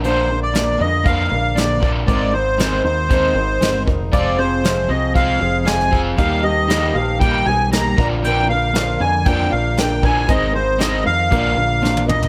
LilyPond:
<<
  \new Staff \with { instrumentName = "Accordion" } { \time 4/4 \key bes \mixolydian \tempo 4 = 117 c''8. d''8. ees''8 f''4 d''8. r16 | d''8 c''4 c''2 r8 | d''8 c''4 ees''8 f''4 aes''8. r16 | f''8 ees''4 f''8 g''8 aes''8 bes''8. r16 |
g''8 f''4 aes''8 g''8 f''8 g''8 aes''8 | ees''8 c''8 ees''8 f''2 ees''8 | }
  \new Staff \with { instrumentName = "Grand piano" } { \time 4/4 \key bes \mixolydian r1 | r1 | <aes' c'' f''>2 <aes' c'' f''>2 | <g' bes' ees''>2 <g' bes' ees''>4. <f' bes' d''>8~ |
<f' bes' d''>4. r8 <f' bes' d''>2 | <aes' bes' c''>2 <f' bes' d''>2 | }
  \new Staff \with { instrumentName = "Steel-string acoustic guitar" } { \time 4/4 \key bes \mixolydian <bes, f bes d' bes'>8 <bes d' bes'>8 <bes, f bes d' bes'>8 <bes d' bes'>8 <f bes d' bes'>8 <bes d' bes'>8 <bes, f bes d' bes'>8 <bes d' bes'>8 | <aes c' ees' bes'>8 <c' ees' bes'>8 <aes c' ees' bes'>8 <c' ees' bes'>8 <aes c' ees' bes'>8 <c' ees' bes'>8 <aes c' ees' bes'>8 <c' ees' bes'>8 | <f, c f aes c' aes'>8 <f aes c' aes'>8 <f, c f aes c' aes'>8 <f aes c' aes'>8 <f aes c' aes'>8 <f aes c' aes'>8 <f, c f aes c' aes'>8 <f aes c' aes'>8 | <ees bes ees' g'>8 <bes ees' g'>8 <ees bes ees' g'>8 <bes ees' g'>8 <ees bes ees' g'>8 <bes ees' g'>8 <ees bes ees' g'>8 <bes d' bes'>8 |
<bes, f bes d' bes'>8 <bes d' bes'>8 <bes, f bes d' bes'>8 <bes d' bes'>8 <f bes d' bes'>8 <bes d' bes'>8 <bes, f bes d' bes'>8 <bes d' bes'>8 | <aes c' ees' bes'>8 <c' ees' bes'>8 <aes c' ees' bes'>8 <c' ees' bes'>8 <f bes d' bes'>8 <bes d' bes'>8 <bes, f bes d' bes'>8 <bes d' bes'>8 | }
  \new Staff \with { instrumentName = "Overdriven electric guitar" } { \clef bass \time 4/4 \key bes \mixolydian <bes, d f>8 <bes, d>8 <bes, d>8 <bes, d>8 <bes, d f>8 <bes, d>8 <bes, d>8 <bes, d f>8 | <aes, ees aes>8 <aes, ees>8 <aes, ees aes>8 <aes, ees>8 <aes, ees aes>8 <aes, ees>8 <aes, ees>8 <aes, ees>8 | <f c' f'>8 <f c'>8 <f c'>8 <f c'>8 <f c' f'>8 <f c'>8 <f c'>8 <f c' f'>8 | <ees g bes>8 <ees g>8 <ees g bes>8 <ees g>8 <ees g bes>8 <ees g>8 <ees g>8 <bes, d f>8 |
<bes, d f>8 <bes, d>8 <bes, d>8 <bes, d>8 <bes, d f>8 <bes, d>8 <bes, d>8 <bes, d f>8 | <aes, ees aes>8 <aes, ees>8 <aes, ees aes>8 <aes, ees>8 <bes, d f>8 <bes, d>8 <bes, d>8 <bes, d>8 | }
  \new Staff \with { instrumentName = "Picked electric bass" } { \clef bass \time 4/4 \key bes \mixolydian bes,,4. f,4 bes,,4. | aes,,4. ees,4 aes,,8 g,,8 f,,8 | f,,4. c,4 f,,4. | ees,4. bes,,4 b,,4 bes,,8~ |
bes,,4. f,4 bes,,4. | aes,,4. f,8 bes,,8 bes,,4. | }
  \new DrumStaff \with { instrumentName = "Drums" } \drummode { \time 4/4 hh4 <hh sn>4 <hh bd>4 <hh sn>8 bd8 | <hh bd>4 <hh sn>4 <hh bd>4 <hh sn>8 bd8 | <hh bd>4 <hh sn>4 <hh bd>4 <hh sn>16 sn16 bd8 | <hh bd>4 <hh sn>4 <hh bd>4 <hh sn>8 bd8 |
hh4 <hh sn>4 <hh bd>4 <hh sn>8 bd8 | <hh bd>4 <hh sn>4 <hh bd>4 sn16 tommh16 toml16 tomfh16 | }
>>